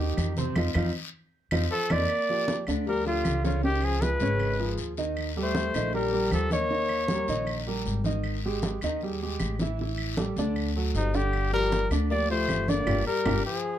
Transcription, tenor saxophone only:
1.70 1.92 F3 medium
1.90 2.67 A#3 medium
2.86 3.04 G3 medium
3.05 3.41 D3 medium
3.43 3.61 D3 medium
3.64 3.85 D#3 medium
3.83 4.03 F3 medium
4.02 4.79 G#3 medium
5.42 5.90 A3 medium
5.94 6.30 G3 medium
6.33 6.50 F3 medium
6.51 7.63 A#3 loud
10.97 11.17 C3 medium
11.16 11.52 D3 medium
11.53 11.89 G3 medium
12.11 12.28 A#3 loud
12.31 12.70 A3 medium
12.69 13.07 A#3 medium
13.07 13.43 G3 medium
13.46 13.79 F3 medium

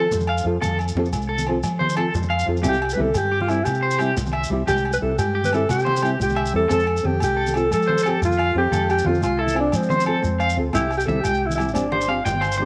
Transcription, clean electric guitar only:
0.00 0.10 A4 medium
0.29 0.44 F5 medium
0.62 0.77 A4 medium
1.29 1.45 A4 medium
1.79 1.95 C5 medium
1.97 2.13 A4 medium
2.30 2.46 F5 medium
2.63 2.79 G4 medium
3.32 3.47 G4 medium
3.83 3.98 C5 medium
3.99 4.15 G4 medium
4.33 4.49 E5 medium
4.67 4.83 G4 medium
5.35 5.50 G4 medium
5.85 6.01 C5 medium
6.02 6.18 G4 medium
6.37 6.52 E5 medium
6.69 6.85 A4 medium
7.37 7.52 A4 medium
7.87 8.03 C5 medium
8.03 8.19 A4 medium
8.38 8.54 F5 medium
8.72 8.87 A4 medium
9.39 9.55 A4 medium
9.90 10.06 C5 medium
10.06 10.22 A4 medium
10.40 10.56 F5 medium
10.75 10.90 G4 medium
11.08 11.24 E5 medium
11.25 11.41 G5 medium
11.59 muted clean electric guitar stroke medium
11.92 12.07 C5 medium
12.09 12.24 F5 medium
12.25 12.41 G5 medium
12.41 12.56 C5 medium
12.58 12.65 C5 medium

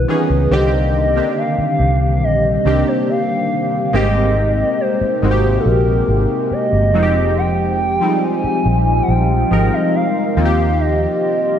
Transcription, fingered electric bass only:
0.30 0.47 C#2 medium
0.51 1.19 C2 medium
1.58 muted fingered electric bass stroke soft
1.80 2.23 C2 medium
2.23 2.57 A#1 medium
2.65 2.82 C2 medium
3.94 4.62 G#1 medium
5.01 muted fingered electric bass stroke soft
5.23 5.57 G#1 loud
5.66 6.00 A#1 medium
6.08 6.25 G#1 medium
6.51 muted fingered electric bass stroke soft
6.72 6.94 G1 medium
6.94 7.97 F1 loud
8.44 muted fingered electric bass stroke soft
8.66 9.00 A#1 medium
9.08 9.43 A#1 medium
9.51 9.68 G#1 medium
10.37 11.05 D#2 loud

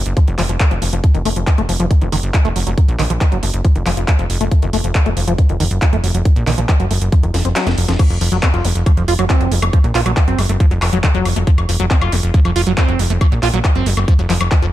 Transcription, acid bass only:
0.17 0.19 F3 loud
0.28 0.30 D#3 medium
0.38 0.42 F3 loud
0.49 0.52 F3 medium
0.60 0.63 F3 medium
0.71 0.75 F3 medium
0.82 0.84 F3 medium
0.93 0.95 F3 medium
1.04 1.06 F3 medium
1.15 1.18 D#3 medium
1.25 1.29 A3 loud
1.36 1.40 F3 medium
1.58 1.62 A3 loud
1.69 1.73 F3 medium
1.80 1.86 F3 loud
1.91 1.93 D#3 medium
2.02 2.05 D#3 medium
2.12 2.16 D#3 loud
2.34 2.38 F4 medium
2.45 2.49 A3 loud
2.56 2.60 F#3 medium
2.67 2.71 F#3 medium
2.78 2.80 D#3 medium
2.99 3.03 D#3 loud
3.10 3.13 F3 loud
3.21 3.25 F3 medium
3.32 3.38 F#3 medium
3.43 3.45 A3 medium
3.65 3.67 F3 loud
3.75 3.78 D#3 medium
3.86 3.90 F3 loud
3.97 4.01 F4 medium
4.08 4.12 F3 medium
4.19 4.25 F3 medium
4.41 4.45 A3 loud
4.52 4.54 F3 medium
4.62 4.66 D#3 medium
4.73 4.77 A3 loud
4.84 4.88 F3 medium
5.06 5.10 A3 loud
5.17 5.21 F3 medium
5.28 5.33 F3 loud
5.38 5.41 D#3 medium
5.49 5.53 D#3 medium
5.60 5.64 D#3 loud
5.82 5.86 F4 medium
5.93 5.97 A3 loud
6.04 6.08 F#3 medium
6.15 6.18 F#3 medium
6.25 6.28 D#3 medium
6.47 6.51 D#3 loud
6.58 6.60 F3 loud
6.69 6.73 F3 medium
6.80 6.86 F#3 medium
6.91 6.93 A3 medium
7.12 7.15 F3 loud
7.23 7.26 D#3 medium
7.34 7.36 F3 medium
7.45 7.49 C4 medium
7.56 7.68 F#3 medium
7.67 7.69 F4 loud
7.88 7.92 F3 medium
7.99 8.03 F3 medium
8.21 8.23 F3 medium
8.32 8.38 F#3 loud
8.43 8.49 C4 medium
8.54 8.66 F4 medium
8.65 8.68 F3 medium
8.86 8.92 F3 medium
8.97 9.03 F3 medium
9.08 9.14 F4 loud
9.19 9.25 F#3 loud
9.30 9.53 C4 medium
9.52 9.55 F3 medium
9.62 9.65 A3 medium
9.73 9.79 F3 medium
9.84 9.86 F#3 medium
9.95 10.01 F4 loud
10.06 10.12 F#3 loud
10.28 10.40 C4 medium
10.38 10.42 F3 medium
10.49 10.52 A3 medium
10.60 10.66 F3 medium
10.71 10.73 F#3 medium
10.93 10.99 F#3 loud
11.04 11.08 D#3 loud
11.15 11.27 F#3 loud
11.25 11.29 F3 medium
11.36 11.39 A3 medium
11.47 11.51 F3 medium
11.69 11.71 F3 medium
11.80 11.86 F#3 loud
11.91 11.96 C4 medium
12.01 12.14 F4 medium
12.12 12.16 F3 medium
12.34 12.40 F3 medium
12.45 12.51 F3 medium
12.56 12.62 F4 loud
12.67 12.73 F#3 loud
12.78 13.01 C4 medium
12.99 13.03 F3 medium
13.10 13.13 A3 medium
13.21 13.27 F3 medium
13.32 13.34 F#3 medium
13.43 13.49 F4 loud
13.54 13.60 F#3 loud
13.75 13.88 C4 medium
13.86 13.90 F3 medium
13.97 13.99 A3 medium
14.08 14.14 F3 medium
14.19 14.21 F#3 medium
14.30 14.34 F3 loud
14.41 14.43 F3 medium
14.51 14.54 F3 medium
14.62 14.66 F3 medium

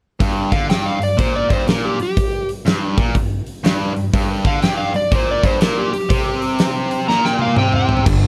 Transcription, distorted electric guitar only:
0.20 0.50 G2 medium
0.52 0.69 D3 medium
0.69 0.99 G2 medium
1.00 1.14 G2 medium
1.17 1.48 A#2 medium
1.49 1.66 G2 medium
1.66 1.98 A#2 medium
2.66 2.96 G2 medium
2.98 3.15 A#2 medium
3.15 3.40 G2 medium
3.64 3.93 G2 medium
3.94 4.09 G2 medium
4.14 4.44 G2 medium
4.46 4.62 D3 medium
4.64 4.94 G2 medium
4.95 5.08 G2 medium
5.12 5.42 A#2 medium
5.43 5.60 G2 medium
5.60 5.91 A#2 loud
6.09 7.07 C3 medium
7.09 7.57 A#2 medium
7.58 8.06 C3 medium
8.06 8.27 G2 medium
8.06 8.27 D3 medium

